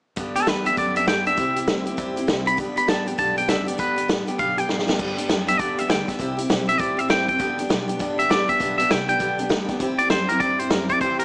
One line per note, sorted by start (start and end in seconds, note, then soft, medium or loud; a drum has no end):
0.16 0.36 G2 medium
0.16 0.47 G2 medium
0.16 0.36 D3 medium
0.16 0.36 G3 medium
0.16 0.36 B3 medium
0.16 0.35 D4 medium
0.16 0.34 G4 medium
0.16 kick loud
0.16 closed hi-hat medium
0.35 0.45 G3 soft
0.35 0.46 B3 soft
0.35 0.47 D4 soft
0.35 0.47 G4 medium
0.35 0.48 A4 medium
0.35 closed hi-hat medium
0.46 0.76 E2 medium
0.46 0.66 G3 medium
0.46 0.65 D4 medium
0.46 0.64 G4 medium
0.46 0.66 B4 medium
0.46 snare loud
0.46 closed hi-hat medium
0.65 0.76 G3 soft
0.65 0.76 B3 soft
0.65 0.77 D4 soft
0.65 0.77 G4 soft
0.65 0.77 E5 medium
0.65 closed hi-hat medium
0.76 1.07 F#2 medium
0.76 0.96 G2 medium
0.76 0.96 D3 medium
0.76 0.96 G3 medium
0.76 0.96 B3 medium
0.76 0.95 D4 medium
0.76 0.94 G4 medium
0.76 0.96 D5 medium
0.76 kick loud
0.76 closed hi-hat medium
0.95 1.05 G3 soft
0.95 1.06 B3 soft
0.95 1.08 D4 soft
0.95 1.07 G4 soft
0.95 1.08 E5 medium
0.95 closed hi-hat medium
1.06 1.37 G2 medium
1.06 1.26 G3 medium
1.06 1.26 B3 medium
1.06 1.25 D4 medium
1.06 1.24 G4 medium
1.06 1.26 G5 medium
1.06 snare loud
1.06 closed hi-hat medium
1.25 1.36 G3 soft
1.25 1.37 B3 soft
1.25 1.38 D4 soft
1.25 1.37 G4 medium
1.25 2.14 E5 medium
1.25 closed hi-hat medium
1.37 1.67 C2 medium
1.37 1.56 C3 medium
1.37 1.56 G3 medium
1.37 1.57 C4 medium
1.37 1.56 E4 medium
1.37 1.54 G4 medium
1.37 kick loud
1.37 closed hi-hat medium
1.56 1.67 C4 soft
1.56 1.68 E4 medium
1.56 1.67 G4 medium
1.56 closed hi-hat medium
1.67 1.97 D2 medium
1.67 1.86 G3 medium
1.67 1.87 C4 medium
1.67 1.86 E4 medium
1.67 1.84 G4 medium
1.67 snare loud
1.67 closed hi-hat medium
1.86 1.97 C4 medium
1.86 1.98 E4 medium
1.86 1.97 G4 medium
1.86 closed hi-hat medium
1.97 2.27 E2 medium
1.97 2.16 C3 medium
1.97 2.17 G3 medium
1.97 2.17 C4 medium
1.97 2.16 E4 medium
1.97 2.15 G4 medium
1.97 kick loud
1.97 closed hi-hat medium
2.16 2.27 C4 medium
2.16 2.28 E4 medium
2.16 2.28 G4 medium
2.16 closed hi-hat medium
2.27 2.57 C2 medium
2.27 2.46 G3 medium
2.27 2.47 C4 medium
2.27 2.46 E4 medium
2.27 2.44 G4 medium
2.27 snare loud
2.27 closed hi-hat medium
2.45 2.58 C4 soft
2.45 2.59 E4 soft
2.45 2.57 G4 medium
2.45 2.58 B5 loud
2.45 closed hi-hat medium
2.57 2.76 G1 medium
2.57 2.76 G2 medium
2.57 2.77 D3 medium
2.57 2.77 G3 medium
2.57 2.77 B3 medium
2.57 2.76 D4 medium
2.57 2.74 G4 medium
2.57 kick loud
2.57 closed hi-hat medium
2.76 2.86 G3 soft
2.76 2.87 B3 soft
2.76 2.88 D4 medium
2.76 2.88 G4 medium
2.76 2.89 B5 medium
2.76 muted upright bass stroke soft
2.76 closed hi-hat medium
2.87 3.17 A1 medium
2.87 3.06 G3 medium
2.87 3.07 B3 medium
2.87 3.06 D4 medium
2.87 3.05 G4 medium
2.87 3.07 A5 medium
2.87 snare loud
2.87 closed hi-hat medium
3.06 3.17 G3 soft
3.06 3.18 B3 soft
3.06 3.18 D4 medium
3.06 3.18 G4 medium
3.06 3.18 G5 medium
3.06 closed hi-hat medium
3.18 3.48 B1 medium
3.18 3.37 G2 medium
3.18 3.37 D3 medium
3.18 3.37 G3 medium
3.18 3.37 B3 medium
3.18 3.36 D4 medium
3.18 3.35 G4 medium
3.18 3.37 A5 medium
3.18 kick loud
3.18 closed hi-hat medium
3.36 3.46 G3 soft
3.36 3.48 B3 soft
3.36 3.48 D4 soft
3.36 3.48 G4 medium
3.36 3.49 G5 medium
3.36 closed hi-hat medium
3.48 3.78 F#1 medium
3.48 3.67 G3 medium
3.48 3.67 B3 medium
3.48 3.66 D4 medium
3.48 3.65 G4 medium
3.48 3.67 E5 medium
3.48 snare loud
3.48 closed hi-hat medium
3.66 3.78 G3 soft
3.66 3.78 B3 soft
3.66 3.78 D4 soft
3.66 3.78 G4 medium
3.66 3.78 D5 loud
3.66 closed hi-hat medium
3.78 4.08 G1 medium
3.78 3.97 G2 medium
3.78 3.97 D3 medium
3.78 3.98 G3 medium
3.78 3.98 B3 medium
3.78 3.96 D4 medium
3.78 3.95 G4 medium
3.78 4.08 B4 loud
3.78 kick loud
3.78 closed hi-hat medium
3.96 4.07 G3 soft
3.96 4.08 B3 soft
3.96 4.09 D4 soft
3.96 4.08 G4 medium
3.96 closed hi-hat medium
4.08 4.27 A1 medium
4.08 4.27 G3 medium
4.08 4.28 B3 medium
4.08 4.27 D4 medium
4.08 4.26 G4 medium
4.08 snare loud
4.08 closed hi-hat medium
4.27 4.39 G3 soft
4.27 4.39 B3 soft
4.27 4.39 D4 medium
4.27 4.39 G4 medium
4.27 closed hi-hat medium
4.39 4.68 B1 medium
4.39 4.58 G2 medium
4.39 4.58 D3 medium
4.39 4.58 G3 medium
4.39 4.58 B3 medium
4.39 4.58 D4 medium
4.39 4.56 G4 medium
4.39 4.58 F5 medium
4.39 kick loud
4.39 closed hi-hat medium
4.57 4.67 G3 soft
4.57 4.69 B3 soft
4.57 4.70 D4 soft
4.57 4.69 G4 medium
4.57 4.69 G5 medium
4.57 closed hi-hat medium
4.69 4.98 A1 medium
4.69 4.88 G3 medium
4.69 4.88 B3 medium
4.69 4.87 D4 medium
4.69 4.86 G4 medium
4.69 snare medium
4.79 snare medium
4.87 4.99 G3 soft
4.87 4.99 B3 soft
4.87 4.99 D4 medium
4.87 4.99 G4 medium
4.87 snare medium
4.99 5.18 G2 medium
4.99 5.28 G2 medium
4.99 5.18 D3 medium
4.99 5.18 G3 loud
4.99 5.18 B3 medium
4.99 5.17 D4 medium
4.99 5.16 G4 medium
4.99 kick loud
4.99 crash medium
5.17 5.27 G3 soft
5.17 5.28 B3 medium
5.17 5.29 D4 medium
5.17 5.29 G4 medium
5.17 closed hi-hat medium
5.28 5.58 F#2 loud
5.28 5.48 G3 medium
5.28 5.48 B3 medium
5.28 5.47 D4 medium
5.28 5.46 G4 medium
5.28 snare loud
5.28 closed hi-hat medium
5.47 5.59 G3 soft
5.47 5.59 B3 soft
5.47 5.59 D4 soft
5.47 5.59 G4 medium
5.47 5.60 E5 medium
5.47 closed hi-hat medium
5.59 5.78 G2 medium
5.59 5.78 D3 medium
5.59 5.78 G3 medium
5.59 5.79 B3 medium
5.59 5.78 D4 medium
5.59 5.76 G4 medium
5.59 5.79 D5 medium
5.59 kick loud
5.59 closed hi-hat medium
5.77 5.87 G3 soft
5.77 5.89 B3 soft
5.77 5.90 D4 medium
5.77 5.89 G4 medium
5.77 5.90 E5 medium
5.77 closed hi-hat medium
5.88 6.07 D2 medium
5.88 6.08 G3 medium
5.88 6.08 B3 medium
5.88 6.07 D4 medium
5.88 6.06 G4 medium
5.88 6.08 G5 medium
5.88 snare loud
5.88 closed hi-hat medium
6.07 6.18 G3 soft
6.07 6.20 B3 soft
6.07 6.19 D4 soft
6.07 6.19 G4 soft
6.07 6.37 E5 medium
6.07 kick medium
6.07 snare soft
6.07 closed hi-hat medium
6.19 6.49 C2 medium
6.19 6.38 C3 medium
6.19 6.38 G3 medium
6.19 6.39 C4 medium
6.19 6.37 E4 medium
6.19 6.35 G4 medium
6.19 kick loud
6.19 closed hi-hat medium
6.37 6.48 C4 soft
6.37 6.49 E4 soft
6.37 6.49 G4 medium
6.37 closed hi-hat medium
6.48 6.79 B1 loud
6.48 6.68 G3 medium
6.48 6.68 C4 medium
6.48 6.67 E4 medium
6.48 6.65 G4 medium
6.48 snare loud
6.48 closed hi-hat medium
6.66 6.78 C4 soft
6.66 6.79 E4 medium
6.66 6.79 G4 medium
6.66 6.80 E5 medium
6.66 closed hi-hat medium
6.78 7.09 A1 medium
6.78 6.98 C3 medium
6.78 6.98 G3 medium
6.78 6.98 C4 medium
6.78 6.98 E4 medium
6.78 6.96 G4 medium
6.78 6.99 D5 medium
6.78 kick loud
6.78 closed hi-hat medium
6.97 7.08 C4 soft
6.97 7.10 E4 soft
6.97 7.09 G4 medium
6.97 7.09 E5 medium
6.97 closed hi-hat medium
7.08 7.39 G#1 medium
7.08 7.28 G3 medium
7.08 7.28 C4 medium
7.08 7.28 E4 medium
7.08 7.26 G4 medium
7.08 7.28 G5 medium
7.08 snare loud
7.08 closed hi-hat medium
7.27 7.40 C4 soft
7.27 7.40 E4 soft
7.27 7.39 G4 medium
7.27 7.58 G5 medium
7.27 kick medium
7.27 closed hi-hat medium
7.39 7.57 G1 medium
7.39 7.58 G2 medium
7.39 7.58 D3 medium
7.39 7.58 G3 medium
7.39 7.59 B3 medium
7.39 7.58 D4 medium
7.39 7.57 G4 medium
7.39 kick loud
7.39 closed hi-hat medium
7.58 7.68 G3 soft
7.58 7.69 B3 soft
7.58 7.70 D4 medium
7.58 7.69 G4 medium
7.58 muted upright bass stroke soft
7.58 closed hi-hat medium
7.69 7.99 B1 medium
7.69 7.88 G3 medium
7.69 7.89 B3 medium
7.69 7.88 D4 medium
7.69 7.86 G4 medium
7.69 snare loud
7.69 closed hi-hat medium
7.88 7.99 G3 soft
7.88 8.00 B3 soft
7.88 8.00 D4 medium
7.88 7.99 G4 medium
7.88 closed hi-hat medium
7.99 8.29 G1 medium
7.99 8.18 G2 medium
7.99 8.19 D3 medium
7.99 8.19 G3 medium
7.99 8.19 B3 medium
7.99 8.18 D4 medium
7.99 8.17 G4 loud
7.99 kick loud
7.99 closed hi-hat medium
8.18 8.28 G3 soft
8.18 8.29 B3 soft
8.18 8.30 D4 soft
8.18 8.29 G4 medium
8.18 8.30 E5 medium
8.18 closed hi-hat medium
8.29 8.47 A1 medium
8.29 8.48 G3 medium
8.29 8.49 B3 medium
8.29 8.48 D4 medium
8.29 8.46 G4 medium
8.29 8.48 D5 medium
8.29 snare loud
8.29 closed hi-hat medium
8.48 8.59 G3 soft
8.48 8.60 B3 soft
8.48 8.60 D4 soft
8.48 8.59 G4 medium
8.48 8.77 E5 medium
8.48 muted upright bass stroke soft
8.48 kick medium
8.48 closed hi-hat medium
8.59 8.89 B1 medium
8.59 8.78 G2 medium
8.59 8.79 D3 medium
8.59 8.79 G3 medium
8.59 8.79 B3 medium
8.59 8.78 D4 medium
8.59 8.76 G4 medium
8.59 kick loud
8.59 closed hi-hat medium
8.78 8.87 G3 soft
8.78 8.89 B3 soft
8.78 8.90 D4 medium
8.78 8.89 G4 medium
8.78 8.91 E5 medium
8.78 closed hi-hat medium
8.89 9.19 C2 medium
8.89 9.08 G3 medium
8.89 9.09 B3 medium
8.89 9.07 G4 medium
8.89 9.08 G5 medium
8.89 snare loud
8.89 closed hi-hat medium
9.08 9.19 G3 soft
9.08 9.19 B3 soft
9.08 9.20 D4 soft
9.08 9.20 G4 medium
9.08 9.38 G5 medium
9.08 closed hi-hat medium
9.19 9.49 B1 medium
9.19 9.38 G2 medium
9.19 9.39 D3 medium
9.19 9.39 G3 medium
9.19 9.39 B3 medium
9.19 9.38 D4 medium
9.19 9.37 G4 medium
9.19 kick loud
9.19 closed hi-hat medium
9.38 9.48 G3 soft
9.38 9.50 B3 soft
9.38 9.51 D4 soft
9.38 9.50 G4 medium
9.38 closed hi-hat medium
9.49 9.79 D2 medium
9.49 9.68 G3 medium
9.49 9.69 B3 medium
9.49 9.68 D4 medium
9.49 9.67 G4 medium
9.49 snare loud
9.49 closed hi-hat medium
9.68 9.79 G3 soft
9.68 9.81 B3 medium
9.68 9.80 D4 medium
9.68 9.80 G4 medium
9.68 kick medium
9.68 snare soft
9.68 closed hi-hat medium
9.80 10.09 E2 medium
9.80 9.99 C3 medium
9.80 9.99 G3 medium
9.80 9.99 C4 medium
9.80 9.99 E4 medium
9.80 9.97 G4 medium
9.80 kick loud
9.80 closed hi-hat medium
9.98 10.10 C4 soft
9.98 10.11 E4 soft
9.98 10.10 G4 medium
9.98 10.10 D5 loud
9.98 closed hi-hat medium
10.10 10.39 F#2 medium
10.10 10.29 G3 medium
10.10 10.29 C4 medium
10.10 10.29 E4 medium
10.10 10.27 G4 medium
10.10 10.29 C5 medium
10.10 snare loud
10.10 closed hi-hat medium
10.28 10.40 C4 soft
10.28 10.41 E4 soft
10.28 10.40 G4 medium
10.28 10.40 A#4 medium
10.28 closed hi-hat medium
10.40 10.70 G2 medium
10.40 10.59 C3 medium
10.40 10.59 G3 medium
10.40 10.60 C4 medium
10.40 10.59 E4 medium
10.40 10.57 G4 medium
10.40 10.59 D5 loud
10.40 kick loud
10.40 closed hi-hat medium
10.59 10.70 C4 soft
10.59 10.71 E4 soft
10.59 10.70 G4 medium
10.59 10.71 C5 medium
10.59 closed hi-hat medium
10.70 11.00 F#2 loud
10.70 10.89 G3 medium
10.70 10.89 C4 medium
10.70 10.89 E4 medium
10.70 10.88 G4 medium
10.70 10.89 A#4 medium
10.70 snare loud
10.70 closed hi-hat medium
10.89 11.01 C4 soft
10.89 11.01 E4 medium
10.89 11.00 G4 medium
10.89 11.00 D5 medium
10.89 kick medium
10.89 closed hi-hat medium
11.01 11.25 E2 medium
11.01 11.19 C3 medium
11.01 11.20 G3 medium
11.01 11.20 C4 medium
11.01 11.20 E4 medium
11.01 11.18 G4 medium
11.01 11.19 C5 medium
11.01 kick loud
11.01 closed hi-hat medium
11.19 11.25 E4 medium
11.19 11.25 G4 medium
11.19 11.25 A#4 medium
11.19 closed hi-hat medium